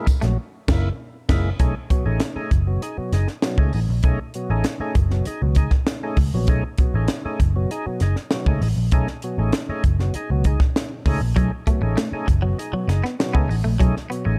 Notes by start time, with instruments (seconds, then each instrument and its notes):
0.06 muted clean electric guitar stroke, muted picked electric bass stroke, kick, closed hi-hat, tambourine
0.21 picked electric bass A#1, tonewheel organ F#3, clean electric guitar A3, snare, closed hi-hat
0.68 picked electric bass F#1, tonewheel organ A#3 E4, kick, snare, crash
1.29 picked electric bass F#1, tonewheel organ G#3 A#3 E4, kick, snare, crash
1.59 picked electric bass B1, tonewheel organ A3 C#4 D#4 G#4, kick, closed hi-hat
1.90 tonewheel organ B2 F#3, kick, closed hi-hat
2.06 picked electric bass A1, tonewheel organ A3 C#4 D#4 G#4
2.20 snare, closed hi-hat
2.36 tonewheel organ A3 C#4 D#4 G#4, muted picked electric bass stroke
2.51 picked electric bass F#1, kick, closed hi-hat
2.67 tonewheel organ B2 F#3
2.82 tonewheel organ D#4 G#4, closed hi-hat
2.98 tonewheel organ B2 F#3, muted picked electric bass stroke
3.13 picked electric bass F#1, tonewheel organ D#4 G#4, snare, closed hi-hat
3.28 snare
3.42 tonewheel organ B2 F#3, snare, closed hi-hat
3.58 picked electric bass C#2, tonewheel organ A3 C#4 D#4 G#4, kick
3.73 picked electric bass A1, tonewheel organ D#4 G#4, open hi-hat
3.89 picked electric bass A#1
4.03 picked electric bass B1, tonewheel organ A3 C#4 D#4 G#4, kick, closed hi-hat
4.34 tonewheel organ B2 F#3, closed hi-hat
4.50 picked electric bass A1, tonewheel organ A3 C#4 D#4 G#4
4.64 snare, closed hi-hat
4.80 tonewheel organ A3 C#4 D#4 G#4, muted picked electric bass stroke
4.95 picked electric bass F#1, kick, closed hi-hat
5.11 tonewheel organ B2 F#3, snare
5.25 tonewheel organ D#4 G#4, muted picked electric bass stroke, closed hi-hat
5.42 picked electric bass C#2, tonewheel organ B2 F#3
5.55 tonewheel organ D#4 G#4, kick, closed hi-hat
5.71 kick, snare
5.87 snare, closed hi-hat
6.03 tonewheel organ A3 C#4 D#4 G#4
6.17 picked electric bass C#2, kick, open hi-hat
6.34 picked electric bass A#1, tonewheel organ B2 F#3
6.47 picked electric bass B1, tonewheel organ A3 C#4 D#4 G#4, kick, closed hi-hat
6.78 tonewheel organ B2 F#3, kick, closed hi-hat
6.94 picked electric bass A1, tonewheel organ A3 C#4 D#4 G#4
7.08 snare, closed hi-hat
7.25 tonewheel organ A3 C#4 D#4 G#4, muted picked electric bass stroke
7.40 picked electric bass F#1, kick, closed hi-hat
7.56 tonewheel organ B2 F#3
7.71 tonewheel organ D#4 G#4, closed hi-hat
7.86 tonewheel organ B2 F#3, muted picked electric bass stroke
8.00 picked electric bass F#1, tonewheel organ D#4 G#4, snare, closed hi-hat
8.16 snare
8.31 tonewheel organ B2 F#3, snare, closed hi-hat
8.46 picked electric bass C#2, tonewheel organ A3 C#4 D#4 G#4, kick
8.61 picked electric bass A1, tonewheel organ D#4 G#4, open hi-hat
8.77 picked electric bass A#1
8.91 picked electric bass B1, tonewheel organ A3 C#4 D#4 G#4, kick, closed hi-hat
9.07 snare
9.22 tonewheel organ B2 F#3, closed hi-hat
9.38 picked electric bass A1, tonewheel organ A3 C#4 D#4 G#4
9.53 snare, closed hi-hat
9.69 tonewheel organ A3 C#4 D#4 G#4, muted picked electric bass stroke
9.84 picked electric bass F#1, kick, closed hi-hat
9.99 tonewheel organ B2 F#3, snare
10.14 tonewheel organ D#4 G#4, muted picked electric bass stroke, closed hi-hat
10.30 picked electric bass C#2, tonewheel organ B2 F#3
10.44 tonewheel organ D#4 G#4, kick, closed hi-hat
10.60 kick, snare
10.76 snare, closed hi-hat
11.06 picked electric bass C#2, tonewheel organ A3 C#4 D#4 G#4, kick, open hi-hat
11.21 picked electric bass A#1
11.36 picked electric bass B1, clean electric guitar F#3, tonewheel organ A3 C#4 D#4 G#4, kick, closed hi-hat
11.67 tonewheel organ B2 F#3, clean electric guitar A3, kick, closed hi-hat
11.82 picked electric bass A1, tonewheel organ A3 C#4 D#4 G#4, muted clean electric guitar stroke
11.97 clean electric guitar A3, snare, closed hi-hat
12.12 tonewheel organ A3 C#4 D#4 G#4, muted picked electric bass stroke
12.28 picked electric bass F#1, muted clean electric guitar stroke, kick, closed hi-hat
12.42 tonewheel organ B2 F#3, clean electric guitar F#3
12.59 tonewheel organ D#4 G#4, closed hi-hat
12.73 tonewheel organ B2 F#3, clean electric guitar F#3, muted picked electric bass stroke
12.88 picked electric bass F#1, tonewheel organ D#4 G#4, muted clean electric guitar stroke, snare, closed hi-hat
13.04 clean electric guitar B3, snare
13.19 tonewheel organ B2 F#3, snare, closed hi-hat
13.33 picked electric bass C#2, tonewheel organ A3 C#4 D#4 G#4, clean electric guitar B3, kick
13.49 picked electric bass A1, tonewheel organ D#4 G#4, muted clean electric guitar stroke, open hi-hat
13.64 picked electric bass A#1, clean electric guitar A3
13.80 picked electric bass B1, clean electric guitar F#3, tonewheel organ A3 C#4 D#4 G#4, kick, closed hi-hat
13.97 snare
14.10 tonewheel organ B2 F#3, clean electric guitar B3, closed hi-hat
14.25 picked electric bass A1, tonewheel organ A3 C#4 D#4 G#4, muted clean electric guitar stroke